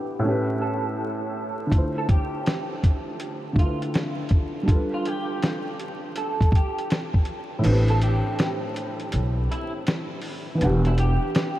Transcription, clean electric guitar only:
0.62 A4
1.98 A4
2.10 G4
3.59 F4
4.94 F4
5.07 G4
6.18 A4
6.55 G4
7.90 A4
8.03 G4
9.51 E4
10.87 E4
11.00 G4

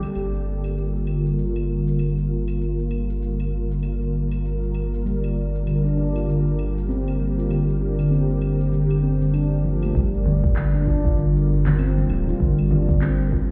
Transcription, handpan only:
0.04 G3
5.06 G3
5.67 D3
5.85 D4
5.97 D4
6.15 F4
6.28 D3
6.89 C4
7.20 G3
7.38 F4
7.50 D3
7.68 G3
7.81 D4
7.99 D3
8.11 C4
8.72 D3
9.03 C4
9.21 D3
9.33 D4
9.64 F3
9.83 A3
9.95 G3
10.56 D3
10.74 D4
10.87 D4
11.05 F4
11.18 D3
11.79 C4
12.10 G3
12.28 F4
12.40 D3
12.59 G3
12.72 D4
12.89 D3
13.02 C4

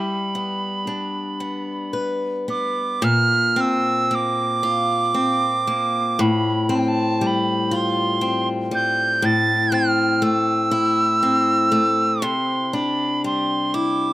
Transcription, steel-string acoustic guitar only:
Already playing: G3
0.35 B3
0.87 D4
1.40 B3
1.93 B4
2.48 B3
3.02 A#2
3.56 C4
4.11 A#3
4.63 F4
5.14 C4
5.67 A#3
6.19 A2
6.69 C4
7.21 G3
7.71 F4
8.21 C4
8.71 G3
9.22 A2
9.72 C4
10.22 A3
10.71 E4
11.23 C4
11.72 A3
12.22 C3
12.73 D4
13.24 G3
13.74 E4

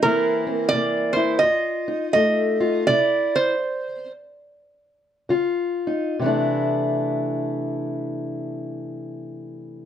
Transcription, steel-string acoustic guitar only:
0.03 C3 E3 A#3 C4 E4
0.47 C4
0.73 C3 A#3
1.17 E4
1.43 F2 F4
1.88 D#4
2.14 F2 A3
2.60 F4
2.88 C3 E4
5.29 C#3 F4
5.87 D#4
6.19 C3 E3
6.24 A3 D4 E4

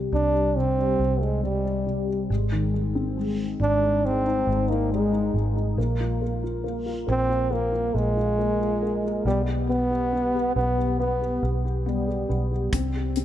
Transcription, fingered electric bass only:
0.12 C2
0.99 C2
2.30 G#1
3.60 G#1
4.47 G#1
5.34 G#1
5.77 A#1
7.08 A#1
7.95 A#1
9.25 B1
10.56 B1
11.43 B1
12.30 B1
12.73 C2

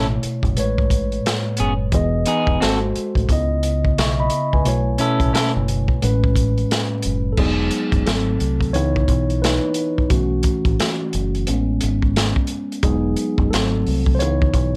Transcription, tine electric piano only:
Already playing: B2 A3 E4 C#5
0.56 A2 G#3 B4 C#5
1.93 E3 B3 G#4 D#5
2.62 G#3 F#4 A4 C5
3.29 C#3 B3 E4 D#5
3.98 E5 C#6
4.20 D#5 B5
4.53 B4 G#5
4.64 B2 A3 E4 C#5
6.01 A2 G#3 C#4 B4
7.33 A4
7.38 F#3 G#3 B3 D#4 G#4
8.06 F#3 A3 C4 A4
8.73 E3 B3 D#4 E4 C#5
9.42 D#4 B4
10.10 E3 A3 C#4 F#4
11.48 G#3 B3 C#4
12.83 F#3 G#3 B3 D#4 G#4
13.51 F#3 A3 C4 A4
14.15 C5
14.19 E3 B3 D#4 E4 C#5

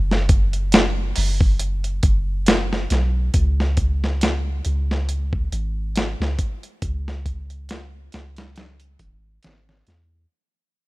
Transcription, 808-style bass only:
Already playing: F#1
1.17 F#1
2.04 F#1
2.91 B1
3.35 C#2
4.66 C#2
5.52 G#1
6.20 C#2
6.83 C#2
8.14 C#2
9.00 G#1
9.45 G#1
9.88 E2

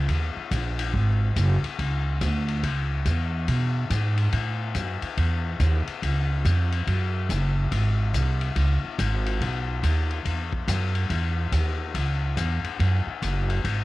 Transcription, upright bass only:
0.09 D#2
0.36 muted upright bass stroke
0.51 A#1
0.94 G#1
1.36 F#1
1.64 muted upright bass stroke
1.79 C#2
2.21 D2
2.63 C#2
3.06 E2
3.48 B2
3.90 G#2
4.33 A2
4.75 F#2
5.02 muted upright bass stroke
5.17 E2
5.60 D#2
6.02 C#2
6.45 F2
6.87 F#2
7.29 F#1
7.72 G#1
8.14 C2
8.56 C#2
8.83 muted upright bass stroke
8.99 G#1
9.41 B1
9.83 D#2
10.25 E2
10.68 F#2
11.10 E2
11.52 D#2
11.94 C#2
12.37 E2
12.64 muted upright bass stroke
12.80 F#2
13.06 muted upright bass stroke
13.22 F#1
13.64 G#1

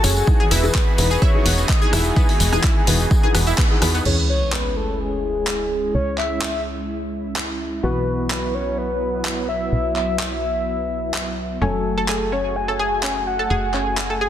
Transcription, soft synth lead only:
0.04 G#4
0.51 B4
1.22 C#5
1.69 D#5
1.93 G#4
4.05 C#5
4.29 C#5
4.53 B4
4.76 A4
5.00 G#4
5.95 C#5
6.18 E5
7.84 B4
8.31 B4
8.55 C#5
8.78 B4
9.49 E5
9.96 E5
11.61 A4
12.09 A4
12.32 C#5
12.56 G#5
13.27 F#5
13.74 G#5

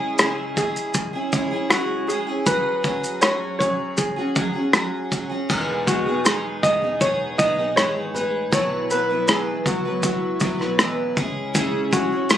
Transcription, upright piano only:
0.19 G#4
0.57 G#4
1.70 F#4
2.08 G#4
2.46 B4
3.21 C#5
3.59 C#5
3.97 G#4
5.87 F#4
6.25 G#4
6.63 D#5
7.01 C#5
7.38 D#5
7.76 C#5
8.14 B4
8.54 C#5
8.91 B4
9.28 G#4
9.67 F#4
10.05 F#4
11.93 F#4

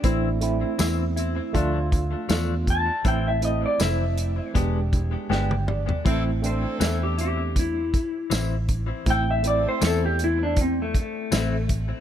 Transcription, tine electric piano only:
0.03 A3 C4 E4
0.41 A3 C4 E4
1.53 A3 D4 F4
3.04 A3 C4 E4
3.41 A3 C4 E4
4.54 G#3 D4 G4
5.30 G5
5.68 D5
6.05 A3 C4 E4
6.42 A3 C4 D4
9.06 A3 C4 E4
9.43 A3 C4 E4

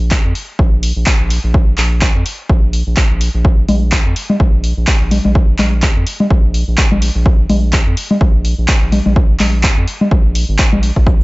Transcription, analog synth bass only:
Already playing: A#1
0.25 F2
0.59 A#1
0.96 A#1
1.20 A#1
1.44 A#1
1.78 A#1
2.15 F2
2.49 A#1
2.87 A#1
3.11 A#1
3.34 A#1
3.69 A#1
4.06 F2
4.40 A#1
4.77 A#1
5.01 A#1
5.25 A#1
5.59 A#1
5.96 F2
6.30 A#1
6.68 A#1
6.91 A#1
7.15 A#1
7.49 A#1
7.87 F2
8.21 A#1
8.58 A#1
8.82 A#1
9.06 A#1
9.40 A#1
9.77 F2
10.11 A#1
10.49 G#1
10.72 A#1
10.96 A#1

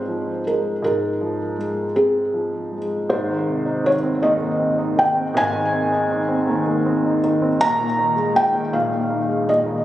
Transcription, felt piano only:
Already playing: C5
0.47 A#4
0.84 A#4
1.96 G#4
3.10 C5
3.86 C#5
4.23 D#5
4.99 G5
5.37 G#5
7.61 A#5
8.36 G5
8.73 F5
9.49 D#5

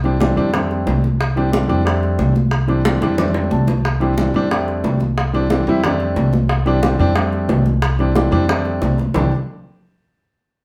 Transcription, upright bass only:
Already playing: C2
0.37 F2
0.87 C2
1.69 F2
2.19 C2
3.01 F2
3.51 C2
4.34 F2
4.84 C2
5.67 F2
6.16 C2
6.99 F2
7.49 C2
8.32 F2
8.82 C2
9.15 C2

